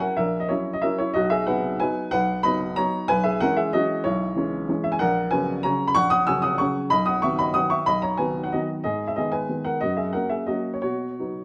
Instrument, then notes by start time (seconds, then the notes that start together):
upright piano
Already playing: F#3 C#4 E4
0.00 A#4 F#5
0.17 A#1 A#4 E5
0.40 D#5
0.49 F#3 C#4 E4 C#5
0.73 D#5
0.82 F#3 C#4 E4 A#4 E5
0.98 E4 C#5
1.14 B1 F#4 D#5
1.30 G#4 E5
1.47 F#3 B3 D#4 B4 F#5
1.80 F#3 B3 D#4 B4 G#5
2.11 B1 B4 F#5
2.43 F#3 B3 D#4 D#5 B5
2.76 F#3 B3 D#4 C#5 A#5
3.08 B1 B4 G#5
3.24 G#4 E5
3.40 E3 G#3 C#4 A#4 F#5
3.56 G#4 E5
3.73 E3 G#3 C#4 F#4 D#5
4.04 B1 E4 C#5
4.36 E3 G#3 C#4
4.69 E3 G#3 C#4
4.84 E5
4.92 G#5
4.99 A#1 A#4 F#5
5.31 C#3 F#3 C#4 B4 G#5
5.63 C#3 F#3 C#4 C#5 A#5
5.88 B5
5.95 A#1 F#5 C#6
6.10 F#5 D#6
6.27 C#3 F#3 C#4 G#5 E6
6.42 F#5 D#6
6.58 C#3 F#3 C#4 F#5 C#6
6.90 B1 D#5 B5
7.06 F#5 D#6
7.22 D#3 F#3 B3 E5 C#6
7.39 D#5 B5
7.54 D#3 F#3 B3 F#5 D#6
7.70 E5 C#6
7.86 B1 D#5 B5
8.02 C#5 A#5
8.17 D#3 F#3 B3 B4 G#5
8.44 F#5
8.52 D#3 F#3 B3 F#4 D#5
8.84 G#2 G#4 D#5
9.07 E5
9.16 D#3 G#3 B3 G#4 D#5
9.32 B4 G#5
9.49 D#3 G#3 B3
9.65 A#4 F#5
9.81 F#2 F#4 D#5
9.97 G#4 E5
10.13 F#3 A#3 C#4 A#4 F#5
10.29 G#4 E5
10.46 F#3 A#3 C#4 F#4 D#5
10.73 C#5
10.82 B2 F#4 C#5
11.20 F#3 B3 D#4